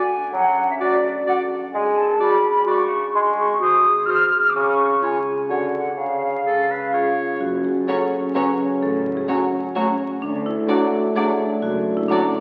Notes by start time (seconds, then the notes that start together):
Already playing: D3 A3 D4 G#5
0.02 A4
0.17 D4
0.33 F#2 F#3 F#5
0.48 A4
0.64 D4
0.70 E5
0.80 F#3 F#4 D5
0.96 A4
1.11 D4
1.27 F#3 F#4 D5 F#5
1.43 A4
1.58 D4
1.73 G#2 G#3 G#5
1.89 G#4
1.97 A5
2.04 D4
2.20 G#3 F#4 D5 B5
2.36 G#4
2.51 D4
2.66 G#3 F#4 D5 C#6
2.82 G#4
2.98 D4
3.13 G#2 G#3 C6
3.29 G#4
3.38 C#6
3.45 C4
3.60 D#3 F#4 C5 D#6
3.76 G#4
3.92 C4
4.07 D#3 F#4 C5 F6
4.24 G#4
4.39 C4
4.49 D6
4.55 C#3 C#6
4.71 G#4
4.87 C#4
5.02 G#3 F4 C#5 G#5
5.18 G#4
5.33 C#4
5.49 D3 F#4 C#5 F#5
5.65 C#4
5.81 F#4 C#5
5.97 C#3 F5
6.13 C#5
6.29 C#4
6.45 G#3 G#4 A4
6.61 C#5
6.70 B4
6.77 C#4
6.92 G#3 F4 G#4 C#5
7.09 C#5
7.25 C#4
7.39 F#1 F#2 F#3 C#4 F#4
7.56 C#5
7.65 G#4
7.72 C#4
7.87 C#3 F#3 C#4 F#4 A4 C#5
8.04 C#5
8.20 C#4
8.34 C#3 F#3 C#4 F#4 B4 C#5
8.50 C#5
8.66 C#4
8.81 A1 A2 A4
8.97 C#5
9.12 C#4
9.17 G#4
9.28 F#3 A3 C#4 F#4 C#5
9.44 C#5
9.60 C#4
9.75 F#3 A3 C#4 F#4 C#5
9.91 C#5
10.07 C#4
10.22 D2 D3 A3 D4
10.38 D5
10.46 E4
10.53 A3
10.68 F#3 A3 D4 F#4 D5
10.84 D5
11.00 A3
11.14 F#3 A3 D4 F#4 G#4 D5
11.31 D5
11.47 A3
11.62 F#1 F#2 F#4
11.78 D5
11.93 A3
11.97 E4
12.08 F#3 A3 D4 F#4 D5
12.24 D5